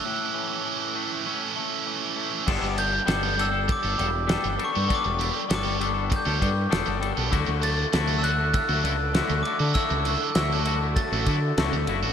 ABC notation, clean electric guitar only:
X:1
M:4/4
L:1/16
Q:1/4=99
K:Glyd
V:1 name="Clean electric guitar"
A,,2 E,2 E,2 A,2 C2 A,2 E,2 A,2 | [G,B,DA]4 [G,B,DA]2 [G,B,DA] [B,DA]2 [B,DA] [G,B,DA]2 [G,B,DA]2 [G,B,DA] [B,DA] | [G,B,DA]4 [G,B,DA]2 [G,B,DA] [B,DA]2 [B,DA] [G,B,DA]2 [G,B,DA]2 [G,B,DA] [B,DA] | [D,A,EF]4 [D,A,EF]2 [D,A,EF] [A,EF]2 [A,EF] [D,A,EF]2 [D,A,EF]2 [D,A,EF] [A,EF] |
[D,A,EF]4 [D,A,EF]2 [D,A,EF] [A,EF]2 [A,EF] [D,A,EF]2 [D,A,EF]2 [D,A,EF] [A,EF] |]